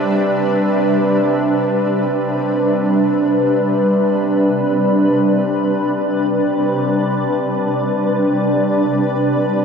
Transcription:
Already playing: C3 G3 D4 B4 E5
4.24 D5

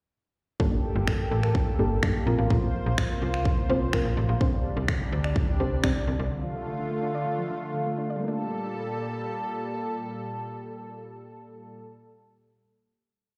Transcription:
0.60 G1 A#3 D4 G4 A4, kick
0.72 D4
0.84 A#3
0.96 G1 A#3
1.08 A#3, finger snap, kick
1.20 G4
1.31 A1 A4
1.43 A#4, finger snap
1.55 A#3, kick
1.67 D4
1.79 G1 A#3 D4 G4 A4
2.03 G2 A#3 D4 G4 A4, finger snap, kick
2.15 G4
2.26 A#1 A#3 C4 F4 A#4 C5
2.38 A1 F5
2.50 A#1 F3, kick
2.62 A#3
2.74 F3
2.86 A#1 F3
2.98 F3, finger snap, kick
3.10 C4
3.22 C2 F4
3.34 F5, finger snap
3.45 F3, kick
3.57 A#3
3.69 C2 F3 A#3 C4 F4 C5
3.93 F3 A#3 C4 F4 A#4, finger snap, kick
4.05 A#1 C4
4.17 A1 F4
4.29 A#1 F5
4.41 C2 C3 D3 G3 C4 D4 G4 C5, kick
4.53 G3
4.65 D3
4.77 C2 D3
4.88 D3, finger snap, kick
5.01 C4
5.12 D2 D4
5.24 D5, finger snap
5.36 D3, kick
5.48 G3
5.60 C2 D3 C4 D4 G4 C5
5.83 C3 D3 C4 D4 G4 D5, finger snap, kick
5.96 C4
6.07 C2 D4
6.19 C2 D5
6.31 D3 A3 F4
6.43 F3
6.55 D3
6.67 D3
6.79 D3
6.91 A3
7.03 D4
7.15 D5
7.26 D3
7.38 F3
7.50 D3
7.74 D3
7.86 A3
7.98 D4
8.10 D5
8.16 G3
8.20 A#2 G3 A3 A#3 A4
8.28 D4

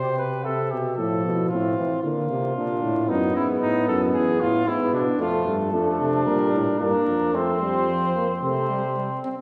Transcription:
Already playing: C3 C5 G5
0.18 B4
0.44 C3 A4 E5
0.71 B2 G4
0.97 A2 F3 A4
1.25 B2
1.49 A2 C4 F4
1.78 E3
2.02 D3 A#3 F4
2.30 C3
2.56 A#2 D4
2.83 A2
3.08 F#2 B3 D#4
3.35 G#2 E4
3.62 A2 D#4
3.88 F#2 A4
4.14 E2 G#4
4.40 A2 F4
4.66 G#2 B3 E4
4.93 B2 D4
5.19 F2 A3 F4 A4
5.46 G2
5.73 F2 A3 D4
6.00 C3
6.26 A#2 G3 A#4
6.53 A2
6.80 G2 A#3 D4 A#4
7.07 F2
7.34 F2 A3 C4 C5
7.61 G3
7.89 F3
8.15 A#3
8.41 C3 A3 C4 C5
8.70 G3
8.97 G3
9.24 C4

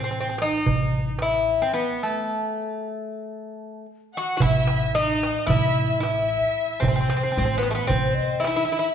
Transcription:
Already playing: A1
0.04 C4
0.11 C4, darbuka ka
0.20 C4
0.29 C4
0.38 D#4, darbuka tek
0.66 A1, darbuka dum
0.93 darbuka ka
1.19 E4, darbuka tek
1.46 darbuka ka
1.62 C4
1.74 B3
2.03 A3
4.14 F#4 F#5
4.37 F#4, darbuka dum
4.41 A1 E4 E5
4.67 darbuka tek
4.90 E5
4.94 D#4 D#5
5.23 darbuka tek
5.47 A1 E4 E5, darbuka dum
5.51 E5
6.00 E4 E5, darbuka tek
6.80 A1 C4, darbuka dum
6.85 C4 C5
6.96 C4
7.01 C4
7.10 C4, darbuka tek
7.16 C4
7.23 C4
7.32 C4
7.37 A1 C4
7.45 C4
7.58 B3
7.63 B4, darbuka tek
7.71 A3
7.75 B3 B4
7.87 A1 C4 C5, darbuka dum
8.14 D#5
8.40 E4 E5
8.44 E4, darbuka tek
8.56 E4
8.65 E4
8.72 E4
8.79 E4

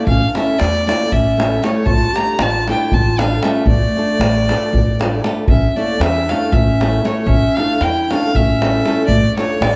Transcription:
0.07 A1 C#4 F5, davul low
0.21 davul high
0.29 D4 F5
0.35 A3 C#4 E4 A4 E5, davul high
0.48 davul high
0.59 E2 A3 D5, davul high
0.87 A3 A#3 C#4 E4 A4 D5, davul high
1.00 davul high
1.12 A1 C#4 E5, davul low
1.37 A3 C#4 E4 A4, davul high
1.62 A3 C#4 E4 A4 C#5, davul high
1.86 A1 F4 A5, davul low
2.14 A3 D4 G4 A#5, davul high
2.18 F4 A4
2.39 A1 F4 A5, davul high
2.68 A3 D4 E4 F4 A4 G5, davul high
2.92 A1 F4 A5, davul low
3.19 A3 D4 F4 A4 F5, davul high
3.42 A3 C#4 D4 F4 A4 E5, davul high
3.66 A1 A3 D5, davul low
3.96 A3 D4 F4 A4
4.19 A1, davul high
4.49 A3 D4 F4 A4, davul high
4.73 A1, davul low
4.99 A3 D4 F4 A4, davul high
5.24 A3 D4 F4 A4, davul high
5.48 A1 C#4 E5, davul low
5.70 C#4 E5
5.76 A3 A#3 C#4 E4 A4 D5
5.99 E2 C#4 E5, davul high
6.26 D4 F5, davul high
6.30 A3 C#4 E4 A4
6.51 A1 C#4 E5, davul low
6.80 A3 C#4 E4 A4, davul high
7.03 A3 C#4 E4 C#5, davul high
7.07 A4
7.26 A1 C#4 E5, davul low
7.43 davul high
7.56 A3 C#4 D4 E4 A4 F5, davul high
7.80 E2 E4 G5, davul high
7.96 davul high
8.10 A3 C#4 D4 E4 A4 F5, davul high
8.23 davul high
8.35 A1 C#4 E5, davul low
8.61 A3 C#4 E4 A4, davul high
8.74 davul high
8.85 A3 C#4 E4 A4, davul high
8.98 davul high
9.07 A1 A3 D5, davul low
9.37 A3 D4 F4 A4 C#5, davul high
9.60 A1 A3 D5, davul high

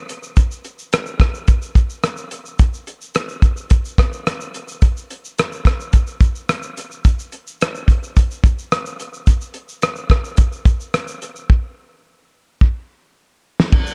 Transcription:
0.09 closed hi-hat, shaker
0.23 shaker
0.37 kick, closed hi-hat, shaker
0.51 shaker
0.65 closed hi-hat, shaker
0.79 shaker
0.93 cross-stick, closed hi-hat, shaker
1.06 shaker
1.20 kick, cross-stick, closed hi-hat, shaker
1.34 shaker
1.48 kick, closed hi-hat, shaker
1.62 shaker
1.75 kick, closed hi-hat, shaker
1.90 shaker
2.04 cross-stick, closed hi-hat, shaker
2.17 shaker
2.31 closed hi-hat, shaker
2.46 shaker
2.59 kick, closed hi-hat, shaker
2.74 shaker
2.87 closed hi-hat, shaker
3.01 shaker
3.15 cross-stick, closed hi-hat, shaker
3.29 shaker
3.42 kick, closed hi-hat, shaker
3.57 shaker
3.70 kick, closed hi-hat, shaker
3.85 shaker
3.98 kick, cross-stick, closed hi-hat, shaker
4.13 shaker
4.27 cross-stick, closed hi-hat, shaker
4.41 shaker
4.54 closed hi-hat, shaker
4.68 shaker
4.82 kick, closed hi-hat, shaker
4.97 shaker
5.10 closed hi-hat, shaker
5.25 shaker
5.38 cross-stick, closed hi-hat, shaker
5.52 shaker
5.65 kick, cross-stick, closed hi-hat, shaker
5.80 shaker
5.93 kick, closed hi-hat, shaker
6.07 shaker
6.21 kick, closed hi-hat, shaker
6.35 shaker
6.49 cross-stick, closed hi-hat, shaker
6.63 shaker
6.77 closed hi-hat, shaker
6.91 shaker
7.05 kick, closed hi-hat, shaker
7.19 shaker
7.32 closed hi-hat, shaker
7.47 shaker
7.61 cross-stick, closed hi-hat, shaker
7.75 shaker
7.88 kick, closed hi-hat, shaker
8.03 shaker
8.17 kick, closed hi-hat, shaker
8.31 shaker
8.44 kick, closed hi-hat, shaker
8.59 shaker
8.72 cross-stick, closed hi-hat, shaker
8.86 shaker
9.00 closed hi-hat, shaker
9.14 shaker
9.27 kick, closed hi-hat, shaker
9.41 shaker
9.54 closed hi-hat, shaker
9.69 shaker
9.82 cross-stick, closed hi-hat, shaker
9.96 shaker
10.10 kick, cross-stick, closed hi-hat, shaker
10.24 shaker
10.37 kick, closed hi-hat, shaker
10.52 shaker
10.65 kick, closed hi-hat, shaker
10.80 shaker
10.94 cross-stick, closed hi-hat, shaker
11.08 shaker
11.22 closed hi-hat, shaker
11.36 shaker
11.50 kick
12.61 kick
13.60 snare
13.72 kick, crash
13.87 shaker

